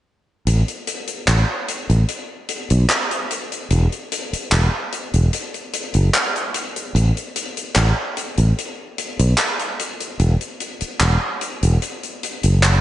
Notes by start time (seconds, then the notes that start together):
0.47 A1, closed hi-hat
0.68 closed hi-hat
0.87 closed hi-hat
1.07 closed hi-hat
1.27 A1, clap, closed hi-hat
1.68 closed hi-hat
1.90 A1, closed hi-hat
2.08 closed hi-hat
2.49 closed hi-hat
2.70 B1, closed hi-hat
2.89 clap, closed hi-hat
3.11 closed hi-hat
3.31 closed hi-hat
3.52 closed hi-hat
3.70 E1, closed hi-hat
3.92 closed hi-hat
4.12 closed hi-hat
4.33 muted fretless electric bass stroke, closed hi-hat
4.52 E1, clap, closed hi-hat
4.92 closed hi-hat
5.13 E1, closed hi-hat
5.33 closed hi-hat
5.54 closed hi-hat
5.73 closed hi-hat
5.94 F#1, closed hi-hat
6.14 clap, closed hi-hat
6.36 closed hi-hat
6.54 closed hi-hat
6.76 closed hi-hat
6.95 A1, closed hi-hat
7.17 closed hi-hat
7.36 closed hi-hat
7.57 closed hi-hat
7.76 A1, clap, closed hi-hat
8.17 closed hi-hat
8.37 A1, closed hi-hat
8.58 closed hi-hat
8.98 closed hi-hat
9.19 B1, closed hi-hat
9.38 clap, closed hi-hat
9.59 closed hi-hat
9.79 closed hi-hat
10.00 closed hi-hat
10.20 E1, closed hi-hat
10.41 closed hi-hat
10.60 closed hi-hat
10.81 muted fretless electric bass stroke, closed hi-hat
11.00 E1, clap, closed hi-hat
11.41 closed hi-hat
11.63 E1, closed hi-hat
11.82 closed hi-hat
12.03 closed hi-hat
12.23 closed hi-hat
12.43 F#1, closed hi-hat
12.63 clap, closed hi-hat